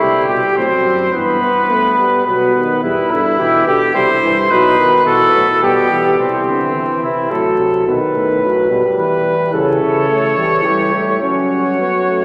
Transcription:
0.00 0.28 C3 medium
0.00 0.57 G3 medium
0.00 0.28 E4 medium
0.00 0.58 G4 medium
0.28 0.41 B2 medium
0.28 0.56 G4 medium
0.56 0.69 A2 medium
0.56 1.13 F#3 medium
0.56 1.12 C4 medium
0.56 1.12 C5 medium
0.85 1.12 F#2 medium
1.13 1.96 G2 medium
1.13 1.41 E3 medium
1.13 2.24 B3 medium
1.13 2.24 B4 medium
1.42 1.72 B3 medium
1.71 1.98 A3 medium
1.99 2.26 G3 medium
2.25 2.79 B2 medium
2.25 2.55 F#3 medium
2.25 2.81 B3 medium
2.25 2.81 B4 medium
2.55 2.83 D#3 medium
2.82 2.96 E2 medium
2.82 3.13 G3 medium
2.82 3.35 E4 medium
2.82 3.12 B4 medium
3.11 3.38 G2 medium
3.11 3.41 D3 medium
3.11 3.66 E4 medium
3.39 3.66 B2 medium
3.39 3.69 E3 medium
3.39 3.93 G4 medium
3.67 3.94 B2 medium
3.67 3.95 D3 medium
3.67 3.94 G4 medium
3.94 4.22 C3 medium
3.94 4.08 G3 medium
3.94 4.49 E4 medium
3.94 4.52 C5 loud
4.22 4.51 G2 medium
4.22 4.35 E3 medium
4.50 5.05 B2 medium
4.50 4.78 F#3 medium
4.50 5.08 D#4 medium
4.50 5.06 B4 loud
4.79 5.08 D#3 medium
5.06 5.34 B2 medium
5.06 5.34 E3 medium
5.06 5.46 F#4 medium
5.06 5.61 A4 loud
5.34 5.47 A2 medium
5.34 5.47 F#3 medium
5.62 5.92 B2 medium
5.62 6.18 G3 medium
5.62 6.18 B3 medium
5.62 6.18 G4 medium
5.91 6.19 E3 medium
6.19 6.45 C3 medium
6.19 7.27 E3 medium
6.19 6.45 C4 medium
6.47 6.75 D3 medium
6.47 7.02 C4 medium
6.75 6.88 E3 medium
7.03 7.30 C3 medium
7.03 7.32 E4 medium
7.30 7.60 A2 medium
7.30 7.86 F#3 medium
7.30 7.86 A4 medium
7.58 7.85 C3 medium
7.86 7.99 B2 medium
7.86 8.41 D#3 medium
7.86 8.96 B4 medium
8.14 8.69 A2 medium
8.43 8.70 F#3 medium
8.70 8.83 B2 medium
8.70 9.52 G3 medium
8.98 9.52 E3 medium
8.98 9.52 B4 medium
9.53 9.81 C#3 medium
9.53 10.08 E3 medium
9.53 10.67 A4 medium
9.53 11.19 C#5 medium
9.81 10.36 C#3 medium
10.09 10.39 A3 medium
10.37 10.67 E3 medium
10.37 10.65 G3 medium
10.65 10.95 E3 medium
10.65 11.21 G3 medium
10.65 11.22 G4 medium
10.93 11.21 A3 medium
11.22 12.25 F#3 medium
11.22 11.78 C#4 medium
11.22 12.25 F#4 medium
11.22 12.25 C#5 medium
11.79 11.92 B3 medium
12.08 12.25 A3 medium

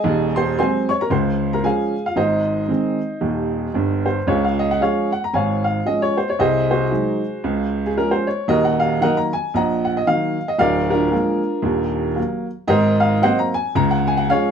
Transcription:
0.00 0.34 G#4 medium
0.00 0.34 D#5 medium
0.00 0.37 G#5 medium
0.04 0.50 D#1 medium
0.04 0.50 D#2 medium
0.36 0.57 C5 medium
0.36 0.57 C6 medium
0.58 0.87 F#3 medium
0.58 0.87 G#3 soft
0.58 0.88 C4 medium
0.58 0.88 C5 medium
0.58 0.88 G#5 medium
0.58 0.90 C6 medium
0.89 1.00 C#5 medium
0.89 1.00 C#6 medium
1.01 1.11 A#4 medium
1.01 1.11 A#5 medium
1.10 1.55 C#2 medium
1.10 1.55 C#3 medium
1.10 1.51 C5 medium
1.10 1.53 C6 medium
1.53 1.64 A#4 medium
1.53 1.64 A#5 medium
1.64 1.93 F3 soft
1.64 1.93 G#3 soft
1.64 1.93 C#4 soft
1.64 2.04 G#4 medium
1.64 2.04 F5 soft
1.64 2.06 G#5 medium
2.06 2.17 F4 soft
2.06 2.17 F5 medium
2.16 2.61 G#1 medium
2.16 2.61 G#2 medium
2.16 4.02 D#4 medium
2.16 4.02 C5 medium
2.16 4.06 D#5 medium
2.69 2.98 D#3 soft
2.69 2.98 G#3 soft
2.69 2.98 C4 soft
3.21 3.66 D#1 medium
3.21 3.66 D#2 medium
3.74 4.17 G1 medium
3.74 4.16 G2 medium
4.06 4.27 C5 medium
4.27 4.72 C#2 medium
4.27 4.72 C#3 medium
4.27 4.43 F4 medium
4.27 4.43 G#4 medium
4.27 4.43 C#5 medium
4.45 4.59 F5 medium
4.59 4.69 D#5 medium
4.71 4.81 F#5 medium
4.81 5.09 F3 soft
4.81 5.10 G#3 soft
4.81 5.10 C#4 soft
4.81 5.10 G#4 medium
4.81 5.10 C#5 medium
4.81 5.12 F5 medium
5.12 5.22 F#5 medium
5.24 5.33 A#5 medium
5.34 5.78 G#1 medium
5.34 5.78 G#2 medium
5.34 5.63 C#5 medium
5.34 5.63 F5 medium
5.34 5.64 G#5 medium
5.64 5.85 F5 medium
5.86 6.14 F3 soft
5.86 6.15 G#3 soft
5.86 6.15 C#4 soft
5.86 6.01 D#5 medium
6.02 6.17 C#5 medium
6.17 6.27 C5 medium
6.30 6.39 C#5 medium
6.39 6.83 C2 medium
6.39 6.83 C3 medium
6.39 6.68 G#4 medium
6.39 6.68 C5 medium
6.39 6.70 D#5 medium
6.71 7.82 F#4 medium
6.71 7.82 G#4 medium
6.71 7.86 C5 medium
6.91 7.19 F#3 soft
6.91 7.20 G#3 soft
6.91 7.20 D#4 soft
7.44 7.88 C#2 medium
7.44 7.88 C#3 medium
7.86 7.96 G#4 medium
7.97 8.25 F3 soft
7.97 8.26 G#3 soft
7.97 8.26 C#4 soft
7.97 8.12 A#4 medium
8.11 8.27 C5 medium
8.27 8.48 C#5 medium
8.48 8.93 D#1 medium
8.48 8.93 D#2 medium
8.48 8.64 F#4 medium
8.48 8.64 A#4 medium
8.48 8.64 D#5 medium
8.65 8.80 F#5 medium
8.80 9.01 F5 medium
9.01 9.30 D#3 soft
9.01 9.30 F#3 soft
9.01 9.30 A#3 soft
9.01 9.17 A#4 medium
9.01 9.17 D#5 medium
9.01 9.17 F#5 medium
9.17 9.33 A#5 medium
9.33 9.54 G#5 medium
9.54 9.99 A#1 medium
9.54 9.99 A#2 medium
9.54 9.84 D#5 medium
9.54 9.83 F#5 medium
9.54 9.86 A#5 medium
9.85 9.96 F#5 medium
9.97 10.07 D#5 medium
10.07 10.36 D#3 soft
10.07 10.36 F#3 soft
10.07 10.36 A#3 soft
10.07 10.49 F5 medium
10.48 10.59 D#5 medium
10.58 11.04 D1 medium
10.58 11.04 D2 medium
10.58 10.89 A#4 medium
10.58 10.89 D5 medium
10.58 10.90 F5 medium
10.90 12.14 D4 medium
10.90 12.14 F4 medium
10.90 12.17 A#4 medium
11.10 11.40 F3 soft
11.10 11.40 G#3 soft
11.10 11.41 A#3 soft
11.62 12.08 D#1 medium
11.62 12.08 D#2 medium
12.16 12.45 F#3 soft
12.16 12.45 A#3 medium
12.67 13.14 G#1 medium
12.67 13.13 G#2 medium
12.67 12.99 A#4 medium
12.67 12.99 C5 medium
12.67 13.00 D#5 medium
13.00 13.22 F5 medium
13.22 13.51 F#3 medium
13.22 13.51 A#3 medium
13.22 13.52 C4 medium
13.22 13.38 C5 medium
13.22 13.38 D#5 medium
13.22 13.38 F#5 loud
13.39 13.54 A#5 medium
13.54 13.76 G#5 medium
13.75 14.20 C#2 medium
13.75 14.20 C#3 medium
13.75 13.91 A#5 medium
13.91 14.07 F#5 medium
14.07 14.18 G#5 medium
14.17 14.28 F#5 medium
14.29 14.51 F3 soft
14.29 14.51 G#3 medium
14.29 14.51 C#4 medium
14.29 14.51 G#4 medium
14.29 14.51 C#5 medium
14.29 14.51 F5 medium

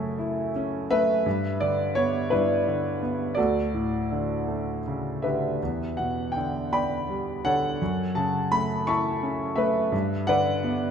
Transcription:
0.00 1.22 F#2 medium
0.00 0.86 C#3 soft
0.00 0.90 A3 soft
0.00 0.50 A4 soft
0.00 0.50 C#5 soft
0.00 0.50 E5 medium
0.19 1.22 E4 soft
0.56 1.24 C#4 soft
0.91 1.25 A3 soft
0.91 1.92 B4 medium
0.91 1.57 E5 medium
1.26 2.31 G2 medium
1.60 2.66 D3 soft
1.60 1.97 D5 medium
1.95 3.01 B3 soft
1.95 2.32 C#5 medium
2.30 3.35 G2 soft
2.30 3.34 D4 soft
2.30 3.34 E4 soft
2.30 3.40 B4 medium
2.67 3.36 D3 soft
3.03 3.37 B3 soft
3.35 5.56 D2 soft
3.35 4.81 F#4 soft
3.35 4.81 A4 medium
3.35 4.80 D5 medium
3.74 5.19 A2 soft
4.12 5.23 D3 soft
4.48 5.57 A3 soft
4.87 5.59 C#3 soft
5.22 5.60 D3 soft
5.22 6.30 G4 soft
5.22 6.30 B4 soft
5.22 5.93 E5 medium
5.63 7.78 E2 soft
5.97 7.42 B2 soft
5.97 6.35 F#5 medium
6.32 6.67 G5 medium
6.37 7.43 D3 soft
6.73 7.78 B3 soft
6.73 7.78 D5 soft
6.73 7.77 G5 soft
6.73 7.41 B5 medium
7.09 7.79 G3 soft
7.45 7.80 D3 soft
7.45 8.49 A4 soft
7.45 8.48 C#5 soft
7.45 8.19 F#5 medium
7.82 9.90 F#2 soft
8.15 9.54 C#3 soft
8.15 8.52 A5 medium
8.52 9.56 A3 soft
8.52 8.88 B5 medium
8.87 9.90 E4 soft
8.87 9.54 E5 medium
8.87 9.90 A5 medium
8.87 9.60 C#6 medium
9.23 9.91 C#4 soft
9.56 9.92 A3 soft
9.56 10.28 B4 medium
9.56 10.29 E5 medium
9.92 10.91 G2 medium
10.27 10.91 D3 soft
10.27 10.91 B4 medium
10.27 10.91 D5 medium
10.27 10.91 F#5 medium
10.64 10.91 B3 medium

